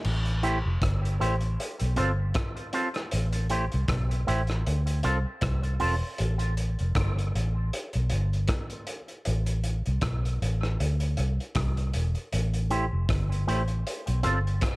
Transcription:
0.04 fingered electric bass A1, crash
0.26 closed hi-hat
0.43 clean electric guitar A3 E4 G4 C5, closed hi-hat
0.66 fingered electric bass F1
0.82 fingered electric bass G1, kick, cross-stick, closed hi-hat
1.05 closed hi-hat
1.20 fingered electric bass A1, clean electric guitar A3 E4 G4 C5, closed hi-hat
1.41 closed hi-hat
1.60 closed hi-hat
1.80 fingered electric bass B1, closed hi-hat
1.96 fingered electric bass G1, clean electric guitar C4 F4 A4 C5, closed hi-hat
2.34 kick, cross-stick, closed hi-hat
2.57 closed hi-hat
2.73 clean electric guitar C4 F4 A4 C5, closed hi-hat
2.94 cross-stick, closed hi-hat
3.11 fingered electric bass A1, closed hi-hat
3.33 closed hi-hat
3.50 clean electric guitar A3 E4 G4 C5, closed hi-hat
3.72 fingered electric bass C2, closed hi-hat
3.88 fingered electric bass B1, kick, cross-stick, closed hi-hat
4.11 closed hi-hat
4.27 fingered electric bass A1, clean electric guitar A3 E4 G4 C5, closed hi-hat
4.47 cross-stick, closed hi-hat
4.67 fingered electric bass D2, closed hi-hat
4.87 closed hi-hat
5.03 fingered electric bass C2, clean electric guitar C4 F4 A4 C5, closed hi-hat
5.41 fingered electric bass C2, kick, cross-stick, closed hi-hat
5.63 closed hi-hat
5.80 fingered electric bass E1, clean electric guitar C4 F4 A4 C5, open hi-hat
6.18 fingered electric bass A1, closed hi-hat
6.39 closed hi-hat
6.57 closed hi-hat
6.79 fingered electric bass F1, closed hi-hat
6.95 fingered electric bass G1, kick, cross-stick, closed hi-hat
7.18 closed hi-hat
7.35 fingered electric bass A1, closed hi-hat
7.73 closed hi-hat
7.93 fingered electric bass B1, closed hi-hat
8.10 fingered electric bass G1, closed hi-hat
8.33 closed hi-hat
8.48 kick, cross-stick, closed hi-hat
8.70 closed hi-hat
8.87 closed hi-hat
9.08 closed hi-hat
9.25 fingered electric bass A1, closed hi-hat
9.46 closed hi-hat
9.64 closed hi-hat
9.86 fingered electric bass C2, closed hi-hat
10.01 fingered electric bass B1, kick, cross-stick, closed hi-hat
10.25 closed hi-hat
10.42 fingered electric bass A1, closed hi-hat
10.63 cross-stick
10.80 fingered electric bass D2, closed hi-hat
11.00 closed hi-hat
11.17 fingered electric bass C2, closed hi-hat
11.40 closed hi-hat
11.55 fingered electric bass C2, kick, cross-stick, closed hi-hat
11.77 closed hi-hat
11.94 fingered electric bass E1, closed hi-hat
12.15 closed hi-hat
12.32 fingered electric bass A1, closed hi-hat
12.54 closed hi-hat
12.70 clean electric guitar A3 E4 G4 C5, closed hi-hat
12.93 fingered electric bass F1
13.09 fingered electric bass G1, kick, cross-stick, closed hi-hat
13.32 closed hi-hat
13.47 fingered electric bass A1, clean electric guitar A3 E4 G4 C5, closed hi-hat
13.68 closed hi-hat
13.87 closed hi-hat
14.07 fingered electric bass B1, closed hi-hat
14.23 fingered electric bass G1, clean electric guitar C4 F4 A4 C5, closed hi-hat
14.47 closed hi-hat
14.61 kick, cross-stick, closed hi-hat

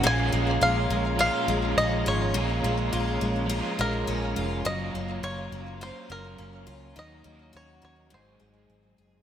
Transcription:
Already playing: twelve-string acoustic guitar A#3 C#4, tonewheel organ A#5
0.03 fingered electric bass A#1, overdriven electric guitar A#2 F3 G#3 C#4, twelve-string acoustic guitar A#2, tonewheel organ G#4 C#5 F5
0.07 overdriven electric guitar F4, five-string banjo G#5
0.31 fingered electric bass A#1, twelve-string acoustic guitar G#3, overdriven electric guitar C#4 F4
0.36 overdriven electric guitar G#3
0.61 fingered electric bass A#1, twelve-string acoustic guitar F4, five-string banjo F5
0.90 fingered electric bass A#1, twelve-string acoustic guitar G#3
1.16 overdriven electric guitar F3, twelve-string acoustic guitar F4
1.20 overdriven electric guitar G#3, five-string banjo F5
1.25 overdriven electric guitar C#4 F4
1.48 fingered electric bass A#1, twelve-string acoustic guitar G#3
1.77 fingered electric bass A#1, twelve-string acoustic guitar C#4, five-string banjo D#5
2.06 fingered electric bass G#1, twelve-string acoustic guitar F4, five-string banjo C#5
2.34 fingered electric bass A#1, twelve-string acoustic guitar A#2, overdriven electric guitar A#2 F3 G#3 C#4
2.38 overdriven electric guitar F4
2.63 fingered electric bass A#1, twelve-string acoustic guitar G#3, overdriven electric guitar C#4 F4
2.68 overdriven electric guitar G#3
2.93 fingered electric bass A#1, twelve-string acoustic guitar F4
3.21 fingered electric bass A#1, twelve-string acoustic guitar G#3
3.46 overdriven electric guitar F3, twelve-string acoustic guitar F4
3.51 overdriven electric guitar G#3 C#4
3.59 overdriven electric guitar F4
3.79 fingered electric bass A#1, twelve-string acoustic guitar G#3, five-string banjo A#4
4.07 fingered electric bass A#1, twelve-string acoustic guitar C#4
4.36 fingered electric bass F1, twelve-string acoustic guitar F4
4.65 fingered electric bass F#1, overdriven electric guitar F#3 A#3 C#4, twelve-string acoustic guitar F#3, tonewheel organ F#3 A#5, five-string banjo D#5
4.69 overdriven electric guitar F4
4.93 fingered electric bass F#1, twelve-string acoustic guitar A#3, overdriven electric guitar C#4 F4
4.98 overdriven electric guitar A#3
5.23 fingered electric bass F#1, twelve-string acoustic guitar F4, five-string banjo C#5
5.52 fingered electric bass F#1, twelve-string acoustic guitar A#3
5.77 overdriven electric guitar F#3
5.81 overdriven electric guitar A#3, twelve-string acoustic guitar F4, five-string banjo C5
5.86 overdriven electric guitar C#4 F4
6.10 fingered electric bass F#1, twelve-string acoustic guitar A#3, five-string banjo A#4
6.38 fingered electric bass F#1, twelve-string acoustic guitar C#4
6.67 fingered electric bass C#2, twelve-string acoustic guitar F4
6.95 fingered electric bass D#2, overdriven electric guitar D#3 A#3 C#4, twelve-string acoustic guitar D#3, tonewheel organ D#5, five-string banjo D#5
7.00 overdriven electric guitar F#4
7.24 fingered electric bass D#2, twelve-string acoustic guitar A#3, overdriven electric guitar C#4 F#4
7.30 overdriven electric guitar A#3
7.53 fingered electric bass D#2, twelve-string acoustic guitar F#4, five-string banjo C#5
7.82 fingered electric bass D#2, twelve-string acoustic guitar A#3, five-string banjo C#5
8.09 fingered electric bass G#1, twelve-string acoustic guitar G#2, overdriven electric guitar F#3, tonewheel organ C5 G#5
8.13 overdriven electric guitar G#3 C4, five-string banjo C5
8.21 overdriven electric guitar G#4
8.40 fingered electric bass G#1, twelve-string acoustic guitar G#3
8.70 fingered electric bass G#1, twelve-string acoustic guitar C4
8.98 fingered electric bass F#1, twelve-string acoustic guitar G#4

